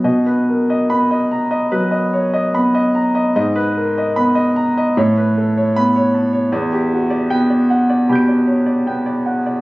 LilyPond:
<<
  \new Staff \with { instrumentName = "Grand piano" } { \time 4/4 \key e \lydian \tempo 4 = 75 << { r4 b''8 r2 r8 | r4 b''8 r4. b''8 r8 | r4 g''8 r8 <b'' g''' d''''>2 | } \\ { dis''16 b'16 ais'16 dis''8 dis''16 ais''16 dis''16 b'16 dis''16 cis''16 dis''16 b''16 dis''16 ais''16 dis''16 | dis''16 b'16 ais'16 dis''8 dis''16 ais''16 dis''16 cis''16 b'16 a'16 cis''8 cis''16 a''16 cis''16 | d''16 g'16 fis'16 d''8 d''16 fis''16 d''16 g'16 d''16 cis''16 d''16 g''16 d''16 fis''16 d''16 | } >> }
  \new Staff \with { instrumentName = "Grand piano" } { \clef bass \time 4/4 \key e \lydian b,4 b8 r8 fis8 r8 b8 r8 | gis,4 b8 r8 a,4 b8 r8 | e,4 b8 r8 b,8 r8 b8 r8 | }
>>